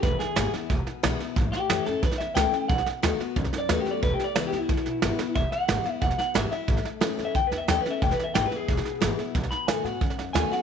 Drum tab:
HH |----p-------p---|----p-------p---|----p-------p---|----p-------p---|
SD |o-o-o-o-o-o-o-o-|o-o-o-o-ooo-o-o-|ooo-o-o-ooo-o-o-|o-o-o-o-ooo-o-o-|
BD |o-------o-------|o-------o-------|o-------o-------|o-------o-------|

HH |----p-------p---|----p-------p---|----p-------p---|----p-------p---|
SD |o-o-o-o-ooo-o-o-|ooo-o-o-o-o-o-o-|ooo-o-o-ooo-o-o-|ooo-o-o-ooo-o-o-|
BD |o-------o-------|o-------o-------|o-------o-------|o-------o-------|